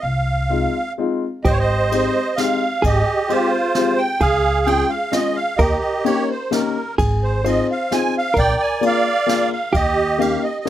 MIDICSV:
0, 0, Header, 1, 6, 480
1, 0, Start_track
1, 0, Key_signature, -4, "major"
1, 0, Tempo, 468019
1, 40, Time_signature, 3, 2, 24, 8
1, 2439, Tempo, 460123
1, 11112, End_track
2, 0, Start_track
2, 0, Title_t, "Accordion"
2, 0, Program_c, 0, 21
2, 10, Note_on_c, 0, 77, 79
2, 950, Note_off_c, 0, 77, 0
2, 1474, Note_on_c, 0, 75, 91
2, 1491, Note_on_c, 0, 72, 66
2, 1555, Note_off_c, 0, 75, 0
2, 1556, Note_on_c, 0, 73, 68
2, 1619, Note_off_c, 0, 72, 0
2, 1629, Note_off_c, 0, 73, 0
2, 1631, Note_on_c, 0, 75, 84
2, 1635, Note_on_c, 0, 72, 67
2, 2401, Note_off_c, 0, 72, 0
2, 2423, Note_on_c, 0, 77, 87
2, 2465, Note_off_c, 0, 75, 0
2, 2927, Note_off_c, 0, 77, 0
2, 2938, Note_on_c, 0, 75, 84
2, 2942, Note_on_c, 0, 67, 66
2, 3390, Note_on_c, 0, 65, 70
2, 3394, Note_on_c, 0, 72, 85
2, 3422, Note_off_c, 0, 75, 0
2, 3611, Note_off_c, 0, 67, 0
2, 4073, Note_off_c, 0, 65, 0
2, 4108, Note_on_c, 0, 79, 97
2, 4138, Note_off_c, 0, 72, 0
2, 4350, Note_on_c, 0, 68, 81
2, 4350, Note_on_c, 0, 77, 98
2, 4356, Note_off_c, 0, 79, 0
2, 4821, Note_on_c, 0, 79, 100
2, 4845, Note_off_c, 0, 77, 0
2, 5033, Note_off_c, 0, 68, 0
2, 5064, Note_on_c, 0, 77, 84
2, 5078, Note_off_c, 0, 79, 0
2, 5296, Note_on_c, 0, 75, 92
2, 5314, Note_off_c, 0, 77, 0
2, 5546, Note_on_c, 0, 77, 91
2, 5555, Note_off_c, 0, 75, 0
2, 5766, Note_on_c, 0, 75, 77
2, 5775, Note_on_c, 0, 67, 65
2, 5794, Note_off_c, 0, 77, 0
2, 5994, Note_off_c, 0, 75, 0
2, 6009, Note_on_c, 0, 75, 75
2, 6265, Note_on_c, 0, 73, 80
2, 6267, Note_off_c, 0, 75, 0
2, 6467, Note_off_c, 0, 67, 0
2, 6521, Note_off_c, 0, 73, 0
2, 6532, Note_on_c, 0, 72, 65
2, 6756, Note_on_c, 0, 70, 67
2, 6771, Note_off_c, 0, 72, 0
2, 7207, Note_off_c, 0, 70, 0
2, 7502, Note_on_c, 0, 72, 70
2, 7737, Note_off_c, 0, 72, 0
2, 7748, Note_on_c, 0, 75, 81
2, 7963, Note_off_c, 0, 75, 0
2, 8001, Note_on_c, 0, 77, 75
2, 8226, Note_off_c, 0, 77, 0
2, 8235, Note_on_c, 0, 80, 93
2, 8469, Note_off_c, 0, 80, 0
2, 8490, Note_on_c, 0, 77, 93
2, 8701, Note_on_c, 0, 74, 71
2, 8707, Note_on_c, 0, 79, 101
2, 8710, Note_off_c, 0, 77, 0
2, 8944, Note_off_c, 0, 79, 0
2, 8948, Note_on_c, 0, 80, 89
2, 9179, Note_off_c, 0, 80, 0
2, 9183, Note_off_c, 0, 74, 0
2, 9199, Note_on_c, 0, 74, 63
2, 9202, Note_on_c, 0, 77, 104
2, 9859, Note_off_c, 0, 74, 0
2, 9881, Note_off_c, 0, 77, 0
2, 9896, Note_on_c, 0, 77, 81
2, 10127, Note_on_c, 0, 67, 70
2, 10131, Note_on_c, 0, 75, 92
2, 10132, Note_off_c, 0, 77, 0
2, 10596, Note_on_c, 0, 77, 80
2, 10618, Note_off_c, 0, 75, 0
2, 10805, Note_off_c, 0, 67, 0
2, 10843, Note_on_c, 0, 75, 76
2, 10849, Note_off_c, 0, 77, 0
2, 11002, Note_off_c, 0, 75, 0
2, 11018, Note_on_c, 0, 75, 57
2, 11078, Note_on_c, 0, 73, 80
2, 11084, Note_off_c, 0, 75, 0
2, 11112, Note_off_c, 0, 73, 0
2, 11112, End_track
3, 0, Start_track
3, 0, Title_t, "Hollow-body jazz guitar"
3, 0, Program_c, 1, 26
3, 1483, Note_on_c, 1, 67, 63
3, 2899, Note_off_c, 1, 67, 0
3, 2903, Note_on_c, 1, 68, 81
3, 4333, Note_off_c, 1, 68, 0
3, 4346, Note_on_c, 1, 68, 78
3, 5785, Note_off_c, 1, 68, 0
3, 5789, Note_on_c, 1, 70, 87
3, 6959, Note_off_c, 1, 70, 0
3, 7243, Note_on_c, 1, 68, 93
3, 7690, Note_off_c, 1, 68, 0
3, 7725, Note_on_c, 1, 72, 88
3, 8653, Note_off_c, 1, 72, 0
3, 8657, Note_on_c, 1, 70, 81
3, 10100, Note_off_c, 1, 70, 0
3, 10105, Note_on_c, 1, 67, 90
3, 11112, Note_off_c, 1, 67, 0
3, 11112, End_track
4, 0, Start_track
4, 0, Title_t, "Upright piano"
4, 0, Program_c, 2, 0
4, 511, Note_on_c, 2, 56, 55
4, 513, Note_on_c, 2, 60, 50
4, 518, Note_on_c, 2, 65, 62
4, 521, Note_on_c, 2, 63, 51
4, 761, Note_off_c, 2, 56, 0
4, 762, Note_off_c, 2, 60, 0
4, 765, Note_off_c, 2, 65, 0
4, 766, Note_off_c, 2, 63, 0
4, 1003, Note_on_c, 2, 56, 63
4, 1008, Note_on_c, 2, 60, 59
4, 1012, Note_on_c, 2, 63, 55
4, 1018, Note_on_c, 2, 65, 70
4, 1250, Note_off_c, 2, 56, 0
4, 1252, Note_off_c, 2, 60, 0
4, 1255, Note_off_c, 2, 63, 0
4, 1257, Note_off_c, 2, 65, 0
4, 1966, Note_on_c, 2, 63, 65
4, 1968, Note_on_c, 2, 56, 58
4, 1969, Note_on_c, 2, 60, 59
4, 1975, Note_on_c, 2, 67, 77
4, 2207, Note_off_c, 2, 63, 0
4, 2208, Note_off_c, 2, 56, 0
4, 2208, Note_off_c, 2, 60, 0
4, 2211, Note_off_c, 2, 67, 0
4, 2436, Note_on_c, 2, 56, 66
4, 2450, Note_on_c, 2, 60, 61
4, 2451, Note_on_c, 2, 63, 55
4, 2452, Note_on_c, 2, 67, 64
4, 2682, Note_off_c, 2, 56, 0
4, 2689, Note_off_c, 2, 60, 0
4, 2690, Note_off_c, 2, 63, 0
4, 2690, Note_off_c, 2, 67, 0
4, 3388, Note_on_c, 2, 56, 65
4, 3396, Note_on_c, 2, 60, 60
4, 3398, Note_on_c, 2, 65, 60
4, 3400, Note_on_c, 2, 67, 72
4, 3636, Note_off_c, 2, 56, 0
4, 3640, Note_off_c, 2, 60, 0
4, 3641, Note_off_c, 2, 65, 0
4, 3642, Note_off_c, 2, 67, 0
4, 3879, Note_on_c, 2, 56, 67
4, 3880, Note_on_c, 2, 60, 60
4, 3885, Note_on_c, 2, 67, 67
4, 3886, Note_on_c, 2, 65, 62
4, 4120, Note_off_c, 2, 56, 0
4, 4120, Note_off_c, 2, 60, 0
4, 4123, Note_off_c, 2, 65, 0
4, 4123, Note_off_c, 2, 67, 0
4, 4824, Note_on_c, 2, 56, 70
4, 4826, Note_on_c, 2, 61, 63
4, 4828, Note_on_c, 2, 68, 73
4, 4829, Note_on_c, 2, 65, 56
4, 5072, Note_off_c, 2, 56, 0
4, 5073, Note_off_c, 2, 61, 0
4, 5074, Note_off_c, 2, 65, 0
4, 5074, Note_off_c, 2, 68, 0
4, 5293, Note_on_c, 2, 56, 65
4, 5299, Note_on_c, 2, 61, 54
4, 5300, Note_on_c, 2, 65, 56
4, 5309, Note_on_c, 2, 68, 64
4, 5546, Note_off_c, 2, 56, 0
4, 5549, Note_off_c, 2, 61, 0
4, 5550, Note_off_c, 2, 65, 0
4, 5554, Note_off_c, 2, 68, 0
4, 6265, Note_on_c, 2, 58, 67
4, 6267, Note_on_c, 2, 61, 65
4, 6270, Note_on_c, 2, 63, 58
4, 6274, Note_on_c, 2, 67, 65
4, 6514, Note_off_c, 2, 58, 0
4, 6515, Note_off_c, 2, 61, 0
4, 6516, Note_off_c, 2, 63, 0
4, 6518, Note_off_c, 2, 67, 0
4, 6748, Note_on_c, 2, 58, 62
4, 6753, Note_on_c, 2, 61, 56
4, 6756, Note_on_c, 2, 63, 58
4, 6757, Note_on_c, 2, 67, 72
4, 6998, Note_off_c, 2, 58, 0
4, 7001, Note_off_c, 2, 61, 0
4, 7002, Note_off_c, 2, 63, 0
4, 7003, Note_off_c, 2, 67, 0
4, 7725, Note_on_c, 2, 60, 62
4, 7725, Note_on_c, 2, 63, 61
4, 7732, Note_on_c, 2, 65, 56
4, 7736, Note_on_c, 2, 68, 70
4, 7967, Note_off_c, 2, 63, 0
4, 7968, Note_off_c, 2, 60, 0
4, 7971, Note_off_c, 2, 65, 0
4, 7973, Note_off_c, 2, 68, 0
4, 8212, Note_on_c, 2, 60, 60
4, 8212, Note_on_c, 2, 65, 56
4, 8215, Note_on_c, 2, 63, 52
4, 8224, Note_on_c, 2, 68, 70
4, 8450, Note_off_c, 2, 60, 0
4, 8450, Note_off_c, 2, 65, 0
4, 8452, Note_off_c, 2, 63, 0
4, 8456, Note_off_c, 2, 68, 0
4, 9150, Note_on_c, 2, 58, 68
4, 9150, Note_on_c, 2, 62, 54
4, 9159, Note_on_c, 2, 65, 65
4, 9163, Note_on_c, 2, 68, 69
4, 9398, Note_off_c, 2, 58, 0
4, 9398, Note_off_c, 2, 62, 0
4, 9402, Note_off_c, 2, 65, 0
4, 9405, Note_off_c, 2, 68, 0
4, 9621, Note_on_c, 2, 62, 59
4, 9622, Note_on_c, 2, 58, 66
4, 9628, Note_on_c, 2, 68, 70
4, 9629, Note_on_c, 2, 65, 61
4, 9873, Note_off_c, 2, 58, 0
4, 9873, Note_off_c, 2, 62, 0
4, 9876, Note_off_c, 2, 68, 0
4, 9877, Note_off_c, 2, 65, 0
4, 10584, Note_on_c, 2, 58, 69
4, 10589, Note_on_c, 2, 61, 58
4, 10589, Note_on_c, 2, 63, 61
4, 10591, Note_on_c, 2, 67, 77
4, 10835, Note_off_c, 2, 58, 0
4, 10838, Note_off_c, 2, 61, 0
4, 10838, Note_off_c, 2, 63, 0
4, 10839, Note_off_c, 2, 67, 0
4, 11072, Note_on_c, 2, 58, 66
4, 11072, Note_on_c, 2, 61, 57
4, 11076, Note_on_c, 2, 63, 61
4, 11077, Note_on_c, 2, 67, 68
4, 11112, Note_off_c, 2, 58, 0
4, 11112, Note_off_c, 2, 61, 0
4, 11112, Note_off_c, 2, 63, 0
4, 11112, Note_off_c, 2, 67, 0
4, 11112, End_track
5, 0, Start_track
5, 0, Title_t, "Upright bass"
5, 0, Program_c, 3, 32
5, 33, Note_on_c, 3, 36, 69
5, 663, Note_off_c, 3, 36, 0
5, 1491, Note_on_c, 3, 32, 84
5, 2109, Note_off_c, 3, 32, 0
5, 2925, Note_on_c, 3, 32, 87
5, 3081, Note_off_c, 3, 32, 0
5, 4357, Note_on_c, 3, 37, 78
5, 4979, Note_off_c, 3, 37, 0
5, 5790, Note_on_c, 3, 39, 94
5, 5949, Note_off_c, 3, 39, 0
5, 7251, Note_on_c, 3, 32, 82
5, 7872, Note_off_c, 3, 32, 0
5, 8695, Note_on_c, 3, 34, 91
5, 8849, Note_off_c, 3, 34, 0
5, 10131, Note_on_c, 3, 39, 88
5, 10752, Note_off_c, 3, 39, 0
5, 11112, End_track
6, 0, Start_track
6, 0, Title_t, "Drums"
6, 1487, Note_on_c, 9, 51, 46
6, 1489, Note_on_c, 9, 36, 84
6, 1590, Note_off_c, 9, 51, 0
6, 1592, Note_off_c, 9, 36, 0
6, 1969, Note_on_c, 9, 51, 50
6, 2071, Note_off_c, 9, 51, 0
6, 2439, Note_on_c, 9, 38, 62
6, 2439, Note_on_c, 9, 51, 46
6, 2543, Note_off_c, 9, 38, 0
6, 2543, Note_off_c, 9, 51, 0
6, 2921, Note_on_c, 9, 36, 83
6, 2923, Note_on_c, 9, 51, 44
6, 3026, Note_off_c, 9, 36, 0
6, 3027, Note_off_c, 9, 51, 0
6, 3401, Note_on_c, 9, 51, 46
6, 3505, Note_off_c, 9, 51, 0
6, 3868, Note_on_c, 9, 38, 57
6, 3868, Note_on_c, 9, 51, 41
6, 3973, Note_off_c, 9, 38, 0
6, 3973, Note_off_c, 9, 51, 0
6, 4344, Note_on_c, 9, 51, 43
6, 4351, Note_on_c, 9, 36, 75
6, 4448, Note_off_c, 9, 51, 0
6, 4455, Note_off_c, 9, 36, 0
6, 4831, Note_on_c, 9, 51, 45
6, 4936, Note_off_c, 9, 51, 0
6, 5305, Note_on_c, 9, 38, 60
6, 5305, Note_on_c, 9, 51, 44
6, 5410, Note_off_c, 9, 38, 0
6, 5410, Note_off_c, 9, 51, 0
6, 5788, Note_on_c, 9, 51, 43
6, 5790, Note_on_c, 9, 36, 79
6, 5892, Note_off_c, 9, 51, 0
6, 5895, Note_off_c, 9, 36, 0
6, 6278, Note_on_c, 9, 51, 47
6, 6382, Note_off_c, 9, 51, 0
6, 6763, Note_on_c, 9, 38, 58
6, 6763, Note_on_c, 9, 51, 46
6, 6867, Note_off_c, 9, 38, 0
6, 6867, Note_off_c, 9, 51, 0
6, 7247, Note_on_c, 9, 36, 81
6, 7249, Note_on_c, 9, 51, 49
6, 7351, Note_off_c, 9, 36, 0
6, 7353, Note_off_c, 9, 51, 0
6, 7734, Note_on_c, 9, 51, 45
6, 7838, Note_off_c, 9, 51, 0
6, 8219, Note_on_c, 9, 38, 62
6, 8219, Note_on_c, 9, 51, 38
6, 8323, Note_off_c, 9, 38, 0
6, 8323, Note_off_c, 9, 51, 0
6, 8685, Note_on_c, 9, 51, 43
6, 8687, Note_on_c, 9, 36, 80
6, 8789, Note_off_c, 9, 51, 0
6, 8791, Note_off_c, 9, 36, 0
6, 9165, Note_on_c, 9, 51, 42
6, 9270, Note_off_c, 9, 51, 0
6, 9650, Note_on_c, 9, 38, 63
6, 9650, Note_on_c, 9, 51, 48
6, 9754, Note_off_c, 9, 38, 0
6, 9754, Note_off_c, 9, 51, 0
6, 10124, Note_on_c, 9, 36, 75
6, 10125, Note_on_c, 9, 51, 46
6, 10228, Note_off_c, 9, 36, 0
6, 10229, Note_off_c, 9, 51, 0
6, 10613, Note_on_c, 9, 51, 47
6, 10717, Note_off_c, 9, 51, 0
6, 11112, End_track
0, 0, End_of_file